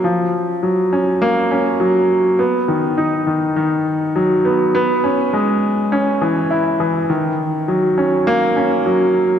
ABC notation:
X:1
M:4/4
L:1/8
Q:1/4=102
K:C#mix
V:1 name="Grand piano"
E, z F, C A, C F, z | B, D, D D, D, z F, B, | B, C G, z C =E, =E E, | D, z F, C A, C F, z |]